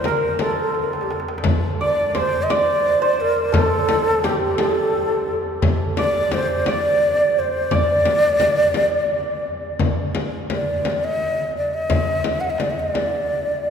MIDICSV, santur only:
0, 0, Header, 1, 2, 480
1, 0, Start_track
1, 0, Tempo, 696864
1, 993, Time_signature, 6, 3, 24, 8
1, 9437, End_track
2, 0, Start_track
2, 0, Title_t, "Santur"
2, 0, Program_c, 0, 15
2, 0, Note_on_c, 0, 72, 78
2, 0, Note_on_c, 0, 74, 81
2, 35, Note_on_c, 0, 70, 72
2, 282, Note_on_c, 0, 69, 55
2, 324, Note_off_c, 0, 70, 0
2, 542, Note_off_c, 0, 74, 0
2, 1245, Note_on_c, 0, 74, 81
2, 1472, Note_off_c, 0, 72, 0
2, 1480, Note_on_c, 0, 72, 80
2, 1722, Note_off_c, 0, 74, 0
2, 1724, Note_on_c, 0, 74, 82
2, 2076, Note_off_c, 0, 72, 0
2, 2079, Note_on_c, 0, 72, 85
2, 2298, Note_off_c, 0, 69, 0
2, 2427, Note_on_c, 0, 69, 74
2, 2922, Note_on_c, 0, 67, 65
2, 3152, Note_off_c, 0, 69, 0
2, 3155, Note_on_c, 0, 69, 61
2, 3421, Note_off_c, 0, 74, 0
2, 3899, Note_off_c, 0, 72, 0
2, 4122, Note_on_c, 0, 74, 89
2, 4597, Note_off_c, 0, 74, 0
2, 4599, Note_on_c, 0, 74, 80
2, 5085, Note_off_c, 0, 67, 0
2, 5170, Note_off_c, 0, 69, 0
2, 5310, Note_off_c, 0, 74, 0
2, 5313, Note_on_c, 0, 74, 81
2, 7009, Note_off_c, 0, 74, 0
2, 9437, End_track
0, 0, End_of_file